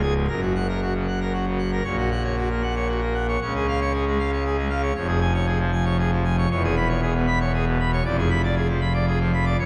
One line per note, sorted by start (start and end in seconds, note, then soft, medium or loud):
0.00 0.27 C#1 medium
0.00 0.27 C#2 medium
0.00 0.13 G#4 medium
0.00 0.14 G#5 medium
0.15 0.27 G#2 medium
0.28 1.81 F#1 medium
0.28 1.81 F#2 medium
0.28 0.40 A#4 medium
0.42 0.53 F#4 medium
0.55 0.67 F#5 loud
0.68 0.80 A#4 medium
0.82 0.93 F#4 medium
0.95 1.06 C#3 medium
1.08 1.19 F#5 medium
1.21 1.32 A#4 medium
1.33 1.45 F#4 medium
1.46 1.58 C#3 medium
1.59 1.71 F#5 medium
1.72 1.83 A#4 medium
1.84 3.37 A#1 medium
1.84 3.37 A#2 medium
1.84 1.96 C#5 medium
1.97 2.10 F#4 medium
2.11 2.23 F#5 loud
2.24 2.36 C#5 medium
2.36 2.48 F#4 medium
2.51 2.62 A#3 medium
2.63 2.75 F#5 medium
2.76 2.88 C#5 medium
2.88 3.00 F#4 medium
3.02 3.14 A#3 medium
3.14 3.26 F#5 medium
3.28 3.39 C#5 medium
3.41 4.92 C#2 medium
3.41 4.92 C#3 medium
3.41 3.53 C#5 medium
3.55 3.66 G#4 medium
3.68 3.79 F5 loud
3.81 3.93 C#5 medium
3.93 4.05 G#4 medium
4.07 4.18 G#3 medium
4.19 4.31 F5 medium
4.33 4.44 C#5 medium
4.45 4.57 G#4 medium
4.57 4.69 G#3 medium
4.70 4.82 F5 medium
4.83 4.93 C#5 medium
4.95 6.46 F1 loud
4.95 6.46 F2 medium
4.95 5.07 C#5 medium
5.08 5.20 G#4 medium
5.21 5.33 G#5 loud
5.34 5.46 C#5 medium
5.47 5.59 G#4 medium
5.59 5.71 F3 medium
5.73 5.85 G#5 medium
5.85 5.97 C#5 medium
5.99 6.10 G#4 medium
6.12 6.23 F3 loud
6.24 6.36 G#5 loud
6.38 6.49 C#5 medium
6.51 8.01 E1 loud
6.51 8.01 E2 loud
6.51 6.62 C#5 loud
6.64 6.75 G#4 medium
6.77 6.88 B5 loud
6.89 7.00 C#5 medium
7.02 7.13 G#4 loud
7.15 7.26 B2 medium
7.27 7.39 B5 medium
7.41 7.52 C#5 medium
7.54 7.65 G#4 medium
7.67 7.78 B2 loud
7.80 7.91 B5 medium
7.93 8.03 C#5 medium
8.05 9.55 F1 loud
8.05 9.55 F2 loud
8.05 8.16 D5 loud
8.18 8.29 G#4 medium
8.30 8.42 B5 loud
8.44 8.55 D5 medium
8.56 8.67 G#4 medium
8.69 8.80 F3 medium
8.81 8.93 B5 medium
8.94 9.06 D5 medium
9.07 9.19 G#4 medium
9.20 9.32 F3 medium
9.33 9.45 B5 medium
9.45 9.57 D5 medium
9.59 9.66 F#1 loud
9.59 9.66 F#2 loud
9.59 9.66 C#5 medium